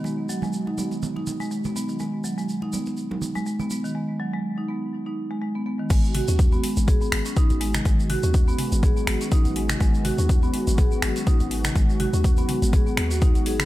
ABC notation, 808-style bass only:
X:1
M:4/4
L:1/16
Q:"Swing 16ths" 1/4=123
K:G#m
V:1 name="808-style bass" clef=bass
z16 | z16 | z16 | G,,,2 z D,,2 z2 G,,,2 z G,,, z2 G,,,2 z |
G,,,2 z D,,2 z2 G,,,2 z G,,, z2 G,,,2 z | G,,,2 z D,,2 z2 G,,,2 z G,,, z2 G,,,2 z | G,,,2 z D,,2 z2 G,,,2 z D,,3 G,,,2 z |]